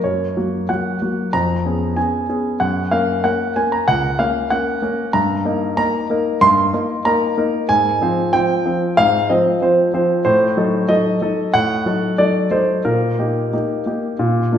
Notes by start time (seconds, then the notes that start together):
0.04 F#2 C#5
0.37 F#3 A#3 F#4
0.69 F#3 A#3 F#4 F#5
1.02 F#3 A#3 F#4
1.33 F2 A#5
1.66 B3 C#4 G#4
1.96 B3 C#4 G#4 G#5
2.29 B3 C#4 G#4
2.60 F#2 F#5
2.91 A#3 C#4 A#4 F5
3.24 A#3 C#4 A#4 F#5
3.56 A#3 C#4 A#4 G#5
3.72 A#5
3.88 C#2 F#5
4.19 A#3 C#4 A#4 F5
4.50 A#3 C#4 A#4 F#5
4.82 A#3 C#4 A#4
5.13 G2 A#5
5.45 A#3 D#4 A#4
5.77 A#3 D#4 A#4 A#5
6.10 A#3 D#4 A#4
6.41 G2 C6
6.73 A#3 D#4 A#4
7.05 A#3 D#4 A#4 A#5
7.37 A#3 D#4 A#4
7.69 G#2 G#5
8.02 F3 C4 C5
8.33 F3 C4 C5 G5
8.66 F3 C4 C5
8.97 G#2 F5
9.29 F3 C4 C5 D#5
9.62 F3 C4 C5
9.94 F3 C4 C5
10.25 A2 C5
10.57 F#3 D#4 A4
10.89 F#3 D#4 A4 D#5
11.22 F#3 D#4 A4
11.54 A2 F#5
11.86 F#3 D#4 A4
12.18 F#3 D#4 A4 D5
12.51 F#3 D#4 A4 C5
12.85 A#2 A#4
13.19 A#3 D#4 G4
13.53 A#3 D#4 G4
13.86 A#3 D#4 G4
14.19 A#2
14.52 A#3 D4 F4